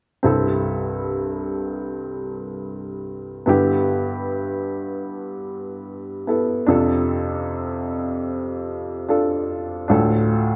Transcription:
0.23 3.44 C2 soft
0.23 3.44 G2 soft
0.23 3.43 C4 soft
0.23 3.44 E4 soft
0.23 3.45 A4 medium
3.46 6.64 G2 soft
3.46 6.64 D3 soft
3.46 6.23 B3 soft
3.46 6.24 E4 soft
3.46 6.25 G4 medium
6.27 6.68 B3 soft
6.27 6.68 E4 soft
6.27 6.68 A4 soft
6.67 9.86 F2 medium
6.67 9.86 C3 medium
6.67 9.05 D4 medium
6.67 9.05 F4 soft
6.67 9.06 A4 medium
9.08 9.87 D4 soft
9.08 9.88 F4 soft
9.08 9.90 A4 soft
9.88 10.56 D2 medium
9.88 10.56 A2 medium
9.88 10.56 D4 medium
9.88 10.56 F4 soft
9.88 10.56 A4 medium

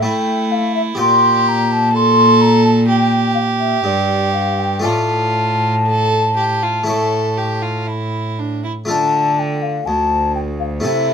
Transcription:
0.00 0.98 A3 medium
0.00 0.95 A3 medium
0.00 0.93 E4 medium
0.00 0.99 E4 medium
0.00 0.94 A4 medium
0.00 0.53 G5 loud
0.51 0.74 F5 medium
0.75 0.81 E5 loud
0.95 3.80 A#2 medium
0.95 4.79 G4 medium
0.95 1.93 G4 medium
0.95 4.80 D5 medium
0.99 1.49 C6 loud
1.48 1.73 A#5 loud
1.71 1.96 A5 loud
1.93 2.86 A4 loud
1.93 2.42 C6 loud
2.41 2.64 A#5 loud
2.64 2.70 A5 medium
2.86 4.81 G4 medium
2.86 3.33 G5 loud
3.34 3.40 F5 medium
3.59 3.83 E5 medium
3.84 4.81 G2 medium
3.84 4.86 G2 medium
3.84 4.32 D5 medium
4.33 4.60 F5 medium
4.59 4.85 G5 medium
4.79 6.81 A3 medium
4.79 6.82 F4 soft
4.79 6.83 D5 medium
4.84 6.84 A2 medium
4.84 6.87 A2 medium
4.84 5.75 F4 medium
4.84 7.88 A5 loud
5.86 6.34 A4 medium
6.36 6.64 G4 medium
6.63 6.87 F4 medium
6.84 8.83 A3 soft
6.84 8.84 E4 soft
6.84 7.38 A4 medium
6.84 8.85 C#5 soft
6.88 8.65 A2 medium
7.37 7.64 G4 medium
7.62 7.89 F4 medium
7.87 8.40 E4 medium
8.39 8.63 D4 medium
8.64 8.72 E4 medium
8.85 9.83 D3 medium
8.85 10.79 A3 medium
8.85 10.79 F4 medium
8.85 10.80 A4 medium
8.89 9.84 D3 medium
8.89 9.40 A5 loud
9.39 9.63 G5 medium
9.62 9.87 F5 medium
9.85 10.80 D2 medium
9.85 10.86 D2 medium
9.85 10.34 A5 loud
10.34 10.40 G5 loud
10.59 10.65 F5 medium
10.80 11.14 A3 soft
10.80 11.14 E4 medium
10.80 11.14 A4 medium
10.84 11.14 C3 medium
10.84 11.14 E5 medium

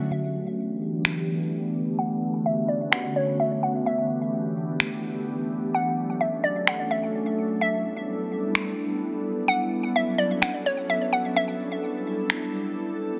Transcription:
0.11 1.97 E3 medium
0.11 3.83 A3 medium
0.11 3.83 B3 medium
0.11 1.97 D4 medium
0.11 1.97 G4 medium
0.11 1.95 E5 loud
1.05 finger snap loud
1.99 3.84 D3 medium
1.99 3.84 C#4 medium
1.99 3.84 F#4 medium
1.99 2.43 F#5 loud
2.46 2.68 E5 medium
2.68 2.91 D5 medium
2.92 3.14 F#5 medium
2.92 finger snap loud
3.16 3.38 C#5 medium
3.40 3.62 E5 medium
3.63 3.85 F#5 medium
3.86 5.72 E3 medium
3.86 7.58 A3 medium
3.86 5.72 B3 medium
3.86 13.20 D4 medium
3.86 5.72 G4 medium
3.86 5.70 E5 loud
4.80 finger snap loud
5.74 7.59 F#3 medium
5.74 7.59 C#4 medium
5.74 9.45 A4 medium
5.74 6.18 F#5 loud
6.21 6.43 E5 medium
6.44 6.66 D5 medium
6.67 6.90 F#5 medium
6.67 finger snap loud
6.91 7.13 E5 medium
7.61 9.47 G3 medium
7.61 13.20 B3 medium
7.61 9.47 E4 medium
7.61 9.45 E5 loud
8.55 finger snap loud
9.48 11.35 F#3 medium
9.48 11.35 C#4 medium
9.48 13.20 A4 medium
9.48 9.93 F#5 loud
9.96 10.18 E5 medium
10.18 10.41 D5 medium
10.42 10.64 F#5 medium
10.42 finger snap loud
10.66 10.88 C#5 medium
10.90 11.12 E5 medium
11.13 11.35 F#5 medium
11.36 13.20 G3 medium
11.36 13.20 E4 medium
11.36 13.20 E5 loud
12.30 finger snap loud

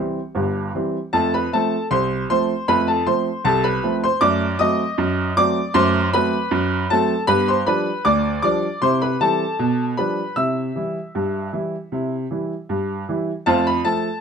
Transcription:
0.00 0.18 E3 soft
0.00 0.18 G3 soft
0.00 0.19 C4 soft
0.00 0.71 G4 medium
0.00 0.19 C5 medium
0.35 0.68 G1 medium
0.35 0.69 G2 medium
0.75 0.96 E3 soft
0.75 0.97 G3 soft
0.75 0.96 C4 medium
1.13 1.46 F2 medium
1.13 1.36 A3 medium
1.13 1.32 A4 medium
1.13 1.32 A5 medium
1.34 1.52 B4 medium
1.34 1.53 B5 medium
1.53 1.74 F3 soft
1.53 1.74 A3 medium
1.53 1.74 C4 medium
1.53 1.89 A4 medium
1.53 1.84 A5 medium
1.91 2.23 C2 medium
1.91 2.27 C5 medium
1.91 2.21 C6 medium
2.30 2.51 F3 medium
2.30 2.51 A3 medium
2.30 2.52 C4 soft
2.30 2.66 C5 medium
2.30 2.66 C6 medium
2.68 3.01 F2 medium
2.68 2.91 A3 medium
2.68 2.86 B4 medium
2.68 2.87 B5 loud
2.88 3.06 A4 medium
2.88 3.07 A5 medium
3.06 3.27 F3 medium
3.06 3.28 A3 medium
3.06 3.28 C4 medium
3.06 3.43 C5 medium
3.06 3.43 C6 medium
3.45 3.77 C2 medium
3.45 3.63 A4 medium
3.45 3.64 A5 medium
3.64 4.00 B4 medium
3.64 3.95 B5 medium
3.83 4.05 F3 soft
3.83 4.05 A3 medium
3.83 4.05 C4 medium
4.04 4.22 C5 medium
4.04 4.22 C6 medium
4.21 4.54 F#2 medium
4.21 4.43 A3 medium
4.21 4.57 D5 medium
4.21 4.58 D6 loud
4.59 4.80 F#3 medium
4.59 4.81 A3 medium
4.59 4.81 C4 medium
4.59 5.33 D#5 medium
4.59 5.32 D#6 medium
4.98 5.31 F#2 medium
5.37 5.58 F#3 medium
5.37 5.58 A3 medium
5.37 5.58 C4 medium
5.37 5.73 D5 medium
5.37 5.73 D6 loud
5.74 6.07 F#2 loud
5.74 5.97 A3 medium
5.74 6.11 C5 medium
5.74 6.05 C6 loud
6.13 6.34 F#3 medium
6.13 6.35 A3 medium
6.13 6.35 C4 medium
6.13 6.86 B4 medium
6.13 6.86 B5 loud
6.51 6.84 F#2 loud
6.90 7.12 F#3 medium
6.90 7.12 A3 medium
6.90 7.12 C4 medium
6.90 7.27 A4 medium
6.90 7.21 A5 loud
7.27 7.60 G2 medium
7.27 7.50 B3 medium
7.27 7.46 B4 medium
7.27 7.47 B5 loud
7.48 7.67 C5 medium
7.48 7.67 C6 medium
7.67 7.88 F3 medium
7.67 7.88 G3 medium
7.67 7.88 D4 medium
7.67 8.03 B4 medium
7.67 8.03 B5 medium
8.05 8.37 D2 medium
8.05 8.41 D5 medium
8.05 8.41 D6 loud
8.42 8.64 F3 medium
8.42 8.64 G3 medium
8.42 8.65 D4 medium
8.42 8.79 D5 medium
8.42 8.73 D6 medium
8.82 9.14 C3 medium
8.82 9.04 E4 medium
8.82 9.00 C5 medium
8.82 9.01 C6 medium
9.02 9.20 B4 medium
9.02 9.20 B5 medium
9.20 9.41 E3 medium
9.20 9.42 G3 medium
9.20 9.43 C4 medium
9.20 9.94 A4 medium
9.20 9.82 A5 medium
9.59 9.92 B2 medium
9.97 10.19 F3 soft
9.97 10.19 G3 medium
9.97 10.19 D4 soft
9.97 10.34 B4 medium
9.97 10.34 B5 medium
10.36 10.70 C3 medium
10.36 10.59 E4 soft
10.36 12.65 E5 medium
10.36 12.22 E6 medium
10.75 10.97 E3 soft
10.75 10.97 G3 soft
10.75 10.97 E4 medium
11.15 11.47 G2 medium
11.53 11.74 E3 soft
11.53 11.74 G3 soft
11.53 11.75 E4 medium
11.92 12.25 C3 medium
11.92 12.14 E4 soft
12.31 12.52 E3 soft
12.31 12.52 G3 soft
12.31 12.52 E4 soft
12.69 13.02 G2 medium
13.09 13.30 E3 medium
13.09 13.30 G3 soft
13.09 13.30 E4 soft
13.46 13.79 F2 loud
13.46 13.69 A3 medium
13.46 13.65 C5 medium
13.46 13.65 F5 medium
13.46 13.66 A5 medium
13.67 13.86 B5 medium
13.85 14.06 F3 medium
13.85 14.06 A3 soft
13.85 14.07 A4 medium
13.85 14.16 A5 medium

